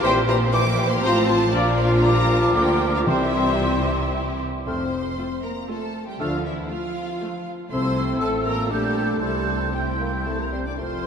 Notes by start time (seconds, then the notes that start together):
0.02 A#1 A#2 E3 C4 G4 C5 G5 C6
0.28 E3 G4 C5 A#5 C6
0.52 E3 A#3 G4 C5 C6 D6
0.78 E3 G4 C5 C6
0.90 C6
1.02 A1 A2 F3 C4 F4 C5 A#5 C6
1.27 F3 F4 C5 A5 C6
1.51 A#1 A#2 F3 D4 F4 A#4 D5 D6
1.78 F5
2.02 F3 G3 F4 A#4 A#5 D6
2.42 A5
2.54 D2 D3 F3 A#3 D4 A#4 G5
2.95 F5
3.06 C2 C3 E3 G3 C4 E4 G4 C5 E5 C6
4.65 F1 F2 A3 C4 C5 C6 F6
5.18 A3 F4
5.43 A#3 A#4 A#5
5.69 A3 F4 A4 A5
6.06 G3 G4 G5
6.19 D2 D3 F3 A3 D4 F4 A4 F5 F6
6.44 E3 E4 E5
6.70 F3 A3 F4 F5
7.21 A3 F4
7.71 C2 C3 A3 C4 E4 A4 C5 C6 E6
8.20 A1 A2 A3 F4 A4 A5
8.44 A#3 A#4 A#5
8.70 A#1 A#2 G3 A3 D4 G4 A4 D5 A5 G6
9.21 C2 C3 G3 A3 E4 A4 C5 A5 G6
9.74 G3 C4 E4 G4 C5 G5 G6
10.00 A#3
10.26 A3 A4 A5
10.40 A#3 A#4 A#5
10.52 G3 C4 C5 C6
10.66 D4 D5 D6
10.77 F1 F2 A3 C4 F4 C5 C6 F6